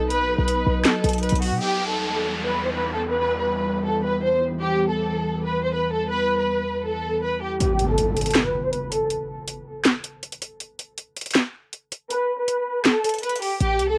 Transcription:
Already playing: B1 F#3 B3 D#4
0.10 B4, closed hi-hat
0.38 B1 B4
0.48 closed hi-hat
0.67 B1
0.85 A4, snare, clap, closed hi-hat
1.04 B1, closed hi-hat
1.09 closed hi-hat
1.13 closed hi-hat
1.18 closed hi-hat
1.23 B4, closed hi-hat
1.29 B1, closed hi-hat
1.35 closed hi-hat
1.41 F#4, open hi-hat
1.51 B2
1.60 E2 E3 G3 B3 G4, downlifter
1.88 A4
2.45 B4
2.64 C5
2.73 B4
2.92 A4
3.10 B4
3.39 B4
3.85 A4
4.04 B4
4.23 C5
4.61 G4
4.88 A4
5.45 B4
5.63 C5
5.73 B4
5.92 A4
6.11 B4
6.38 B4
6.85 A4
7.23 B4
7.42 G4
7.60 G4, closed hi-hat, impact
7.79 closed hi-hat
7.89 A4
7.98 closed hi-hat
8.17 closed hi-hat
8.21 closed hi-hat
8.26 closed hi-hat
8.31 closed hi-hat
8.35 snare, clap, closed hi-hat
8.45 B4
8.64 C5
8.73 B4, closed hi-hat
8.92 A4, closed hi-hat
9.10 closed hi-hat
9.48 closed hi-hat
9.85 snare, clap, closed hi-hat
10.04 closed hi-hat
10.23 closed hi-hat
10.32 closed hi-hat
10.42 closed hi-hat
10.60 closed hi-hat
10.79 closed hi-hat
10.98 closed hi-hat
11.17 closed hi-hat
11.21 closed hi-hat
11.26 closed hi-hat
11.31 closed hi-hat
11.35 snare, clap, closed hi-hat
11.73 closed hi-hat
11.92 closed hi-hat
12.10 B4, closed hi-hat
12.38 B4
12.48 closed hi-hat
12.85 A4, snare, clap, closed hi-hat
13.04 closed hi-hat
13.09 closed hi-hat
13.14 closed hi-hat
13.18 closed hi-hat
13.23 B4, closed hi-hat
13.29 closed hi-hat
13.35 closed hi-hat
13.42 G4, open hi-hat
13.60 A1 G4, closed hi-hat
13.79 C2, closed hi-hat
13.89 A4

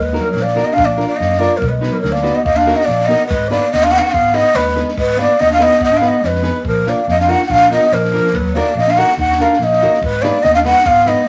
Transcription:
Already playing: D#2 G#3
0.02 B4
0.12 A#3 D#4 F#4 A#4, snare
0.20 F#3 A#4
0.29 F#3 A#4
0.34 A#1, snare
0.41 A#3 D5
0.48 snare
0.55 A#3 D#4 F#4 A#4, snare
0.63 B3 D#5
0.73 D4 F5
0.77 A#1, kick
0.85 A#3 D5
0.96 A#3 D4 F4 A#4, snare
1.07 A#3 D5
1.15 A#3 D#5
1.20 F#2, snare
1.33 A#3, snare
1.38 A#3 D4 F4 A#4 D5, snare
1.57 F#3 A#4
1.61 B1, kick
1.68 G#3 B4
1.81 B3 D#4 F#4 B4, snare
1.91 F#3 A#4
2.00 D2 F#3 A#4
2.05 snare
2.12 A#3 D5, snare
2.22 B3 D#4 F#4 B4, snare
2.34 B3 D#5
2.44 D#2 A#3 D#5, kick
2.56 D4 F5, snare
2.66 A#3 D#4 F#4 A#4, snare
2.76 B3 D#5
2.80 snare
2.85 A#1 A#3 D5
2.90 snare
3.01 snare
3.05 A#3 B3 D#4 D#5
3.10 F#4 A#4, snare
3.27 G#1 G#3 B4, kick
3.50 A#3 B3 D#4 G#4 B4 D5, snare
3.72 D#2 B3 D#5, snare
3.83 D4 F5, snare
3.91 B3 D#4 G#4 B4 F#5
3.95 D4 F5, snare
4.02 D#4 F#5, snare
4.11 G#1 B3 F5, kick
4.32 B3 D#4 G#4 B4 D#5
4.37 snare
4.54 D#2 G#3 B4, snare
4.68 snare
4.76 B3 D#4 G#4 B4, snare
4.88 snare
4.97 G#1 G#3 B4, kick
5.17 A#3 B3 D#4 G#4 B4 D5, snare
5.40 D#2 B3 D#5, snare
5.50 D4 F5, snare
5.58 B3 D#4 G#4 B4, snare
5.63 D#5
5.72 snare
5.79 G#1 B3, kick
5.84 D#5
5.92 D4, snare
5.97 B3 F5
6.01 B3 D#4 G#4 B4, snare
6.08 D#5
6.21 F2 G#3, snare
6.28 B4
6.35 snare
6.42 B3 D#4 G#4 B4, snare
6.64 A#1 F3 A#4, kick
6.85 A#3 D4 F4 A#4 D5, snare
7.07 F2 A#3 D#5, snare
7.19 D4 F5, snare
7.27 A#3 D4 D#4 F4 A#4 F#5, snare
7.42 D#4, snare
7.47 A#1 F#5, kick
7.51 D4 F5
7.70 A#3 B3 D4 F4 A#4 D#5, snare
7.91 A#1 F3 A#4, snare
8.05 snare
8.12 A#3 D4 F4 A#4, snare
8.27 snare
8.33 D#2 F#3 B4, kick
8.54 A#3 D#4 F#4 A#4 D5
8.58 snare
8.75 A#1 A#3 D#5, snare
8.87 D4 F5, snare
8.96 A#3 D#4 F#4 A#4 F#5, snare
9.12 snare
9.17 D#2 D#4 F#5, kick
9.32 snare
9.38 A#3 D4 D#4 F#4 A#4 F5, snare
9.53 snare
9.59 A#1 A#3, snare
9.63 D#5
9.73 snare
9.81 A#3 D#4 F#4 A#4, snare
9.94 snare
10.00 G#1 G#3 B4, kick
10.22 G#3 A#3 B3 D#4 G#4 B4 D5, snare
10.42 D#2 B3 D#5, snare
10.55 D4 F5, snare
10.64 G#3 B3 D#4 G#4 B4 F#5, snare
10.77 snare
10.84 G#1 B3 F5, kick
11.04 G#3 B3 D#4 G#4 B4 D#5, snare
11.25 G#3

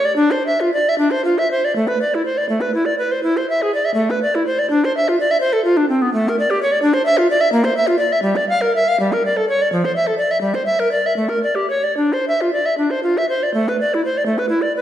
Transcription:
0.05 D5
0.16 D4
0.31 C5
0.47 E5
0.61 F4
0.74 D5
0.89 E5
0.98 D4
1.11 C5
1.25 F4
1.38 E5
1.51 C5
1.65 D5
1.76 A3
1.88 B4
2.02 D5
2.15 E4
2.25 C5
2.38 D5
2.49 A3
2.61 B4
2.74 E4
2.85 D5
2.99 B4
3.11 C5
3.23 E4
3.37 C5
3.50 E5
3.62 G#4
3.74 D5
3.85 E5
3.94 A3
4.10 B4
4.23 D5
4.35 E4
4.47 C5
4.59 D5
4.70 D4
4.85 C5
4.97 E5
5.08 F4
5.20 D5
5.31 E5
5.41 C5
5.53 A4
5.65 F4
5.77 D4
5.89 C4
6.02 B3
6.13 A3
6.29 A#4
6.39 D5
6.50 G4
6.63 C#5
6.72 D5
6.82 D4
6.94 C5
7.06 E5
7.18 F4
7.31 D5
7.41 E5
7.52 A#3
7.64 C5
7.77 E5
7.87 F4
7.99 D5
8.12 E5
8.22 G3
8.36 D5
8.49 F5
8.61 A#4
8.76 E5
8.88 F5
9.00 G3
9.12 A#4
9.26 D5
9.37 A4
9.49 C#5
9.62 D5
9.72 F3
9.85 C5
9.96 E5
10.07 A4
10.18 D5
10.31 E5
10.41 G3
10.54 C5
10.66 E5
10.80 A#4
10.92 D5
11.06 E5
11.16 A3
11.29 A#4
11.43 D5
11.55 G4
11.70 C#5
11.84 D5
11.97 D4
12.13 C5
12.28 E5
12.41 F4
12.53 D5
12.66 E5
12.78 D4
12.90 C5
13.03 F4
13.18 E5
13.29 C5
13.43 D5
13.54 A3
13.68 B4
13.81 D5
13.94 E4
14.05 C5
14.17 D5
14.26 A3
14.38 B4
14.49 E4
14.62 D5
14.77 B4

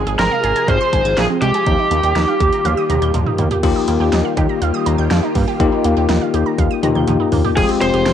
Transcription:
Already playing: C3 F3 G#3 F4 G#4
0.07 G#1 G#4, closed hi-hat
0.19 G#1 C4 A#4, snare, closed hi-hat
0.31 F5
0.44 G#1 G#4, closed hi-hat
0.56 G#5, closed hi-hat
0.68 G#1 C5 F5, kick, closed hi-hat
0.81 C6
0.93 G#1 G#5, kick, closed hi-hat
1.05 G#1 G#6, closed hi-hat
1.17 A#1 F3 G#4, snare, closed hi-hat
1.30 C4
1.42 C2 G#3 G4, closed hi-hat
1.54 G#4, closed hi-hat
1.67 D#2 D#3 F3 G3 A#3 F4 G4, kick, closed hi-hat
1.79 D#4
1.91 D#2 A#3, closed hi-hat
2.03 D#2 G4, closed hi-hat
2.16 D#2 D#4, snare, closed hi-hat
2.28 F5
2.40 D#2 G4, kick, closed hi-hat
2.53 A#5, closed hi-hat
2.65 D#2 F5, closed hi-hat, high tom
2.77 D#6
2.89 D#2 A#5, closed hi-hat, mid tom
3.02 D#2 G6, closed hi-hat
3.14 D#2 F3, closed hi-hat, mid tom
3.26 D#4, mid tom
3.38 D#2 A#3, closed hi-hat, floor tom
3.51 G4, closed hi-hat, floor tom
3.63 D#2 D#3 F3 G3 A#3 D#4 F4 G4, kick, closed hi-hat, crash
3.76 D#4
3.88 D#2 A#3, closed hi-hat
4.00 D#2 G4
4.12 D#2 D#4, snare, closed hi-hat
4.25 F5
4.37 D#2 G4, kick, closed hi-hat
4.49 A#5
4.62 D#2 F5, closed hi-hat
4.74 D#6
4.86 D#2 A#5, closed hi-hat
4.98 D#2 G6
5.11 F2 F3, snare, closed hi-hat
5.23 D#4
5.35 G2 A#3, kick, open hi-hat
5.48 G4
5.60 D#2 F3 A#3 D#4 F4 G4, kick, closed hi-hat
5.72 D#4
5.84 D#2 A#3, closed hi-hat
5.97 D#2 G4
6.09 D#2 D#4, snare, closed hi-hat
6.21 F5
6.34 D#2 G4, closed hi-hat
6.46 A#5
6.58 D#2 F5, kick, closed hi-hat, high tom
6.71 D#6
6.83 D#2 A#3 D#4 F4 G4 A#5, closed hi-hat, mid tom
6.95 D#2 G6, mid tom
7.07 D#2 F3, closed hi-hat, mid tom
7.20 D#4
7.32 D#2 A#3, floor tom, open hi-hat
7.44 G4, floor tom
7.57 F1 F3 G#3 C4 F4 G4 G#4, kick, closed hi-hat, crash
7.69 C4, closed hi-hat
7.81 F1 G#3 C5, closed hi-hat
7.94 F1 G4, closed hi-hat
8.06 F1 C4, snare, closed hi-hat

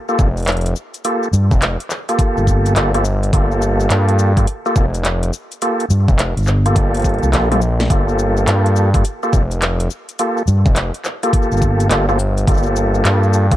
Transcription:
0.09 A#3 F4 G4 A4, shaker
0.19 F1, kick, cross-stick, shaker
0.37 closed hi-hat, shaker
0.40 closed hi-hat
0.42 closed hi-hat
0.45 clap, closed hi-hat
0.48 closed hi-hat, shaker
0.52 closed hi-hat
0.57 closed hi-hat
0.61 closed hi-hat
0.66 closed hi-hat, shaker
0.76 shaker
0.94 closed hi-hat, shaker
1.05 A#3 F4 G4 A4, closed hi-hat, shaker
1.23 shaker
1.33 G2, shaker
1.51 F1, kick, shaker
1.62 clap, closed hi-hat, shaker
1.80 closed hi-hat, shaker
1.90 clap, shaker
2.09 A#3 F4 G4 A4, cross-stick, closed hi-hat, shaker
2.19 kick, closed hi-hat, shaker
2.37 G1, shaker
2.47 kick, shaker
2.66 closed hi-hat, shaker
2.76 G1 A#3 F4 G4 A4, clap, closed hi-hat, shaker
2.94 A#3 F4 G4 A4, cross-stick, closed hi-hat, shaker
3.05 shaker
3.23 closed hi-hat, shaker
3.33 G1 A#3 F4 G4 A4, kick, closed hi-hat, shaker
3.52 shaker
3.62 shaker
3.80 shaker
3.90 G2, clap, closed hi-hat, shaker
4.09 closed hi-hat, shaker
4.19 shaker
4.37 A#3 F4 G4 A4, kick, cross-stick, closed hi-hat, shaker
4.47 closed hi-hat, shaker
4.66 A#3 F4 G4 A4, shaker
4.76 F1, kick, cross-stick, shaker
4.81 cross-stick
4.85 cross-stick
4.90 cross-stick
4.94 cross-stick, closed hi-hat, shaker
4.97 cross-stick
5.00 cross-stick
5.02 cross-stick, clap, closed hi-hat, shaker
5.23 closed hi-hat, shaker
5.33 shaker
5.52 closed hi-hat, shaker
5.62 A#3 F4 G4 A4, closed hi-hat, shaker
5.80 closed hi-hat, shaker
5.90 G2, shaker
6.08 F1, kick, shaker
6.19 clap, closed hi-hat, shaker
6.37 G1, closed hi-hat, shaker
6.39 shaker
6.42 shaker
6.44 shaker
6.46 clap, shaker
6.47 shaker
6.66 A#3 F4 G4 A4, cross-stick, closed hi-hat, shaker
6.76 G1, kick, closed hi-hat, shaker
6.94 closed hi-hat, shaker
6.97 closed hi-hat
6.99 closed hi-hat
7.02 kick, closed hi-hat, shaker
7.09 closed hi-hat
7.14 closed hi-hat
7.18 closed hi-hat
7.23 C2, shaker
7.33 A#1 A#3 F4 G4 A4, snare, clap, closed hi-hat, shaker
7.52 A#3 F4 G4 A4, closed hi-hat, high tom, shaker
7.62 shaker
7.80 snare, closed hi-hat, shaker
7.90 G1 A#3 F4 G4 A4, kick, closed hi-hat, shaker
8.09 shaker
8.19 shaker
8.37 shaker
8.47 G2, clap, closed hi-hat, shaker
8.66 closed hi-hat, shaker
8.76 shaker
8.94 A#3 F4 G4 A4, kick, cross-stick, closed hi-hat, shaker
9.05 closed hi-hat, shaker
9.23 A#3 F4 G4 A4, shaker
9.33 F1, kick, cross-stick, shaker
9.51 closed hi-hat, shaker
9.62 clap, closed hi-hat, shaker
9.80 closed hi-hat, shaker
9.90 shaker
10.09 closed hi-hat, shaker
10.19 A#3 F4 G4 A4, closed hi-hat, shaker
10.37 shaker
10.48 G2, shaker
10.66 F1, kick, shaker
10.76 clap, closed hi-hat, shaker
10.94 closed hi-hat, shaker
11.05 clap, shaker
11.23 A#3 F4 G4 A4, cross-stick, closed hi-hat, shaker
11.33 kick, closed hi-hat, shaker
11.42 shaker
11.52 G1, shaker
11.57 shaker
11.62 kick, shaker
11.80 closed hi-hat, shaker
11.90 G1 A#3 F4 G4 A4, clap, closed hi-hat, shaker
12.09 A#3 F4 G4 A4, cross-stick, shaker
12.19 shaker
12.38 closed hi-hat, shaker
12.47 G1 A#3 F4 G4 A4, kick, closed hi-hat, shaker
12.51 shaker
12.54 shaker
12.57 shaker
12.63 shaker
12.66 shaker
12.76 shaker
12.95 shaker
13.05 G2, clap, closed hi-hat, shaker
13.23 shaker
13.33 shaker
13.52 A#3 F4 G4 A4, kick, cross-stick, closed hi-hat, shaker

